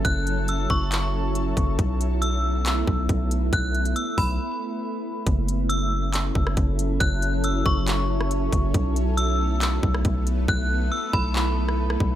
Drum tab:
HH |x-x-x---x---x-x-|x-x-x---x---x-x-|x-xxx-o---------|x-x-x---x---x-x-|
CP |--------x-------|--------x-------|----------------|--------x-------|
SD |----------------|----------------|----------------|-----------r----|
BD |o-----o-------o-|o---------o-o---|o-----o---------|o---------o-o---|

HH |x-x-x---x---x-x-|x-x-x---x---x-x-|----------------|
CP |--------x-------|--------x-------|--------x-------|
SD |-----------r----|-----------r----|-----------r-r--|
BD |o-----o-------o-|o---------o-o---|o-----o-------o-|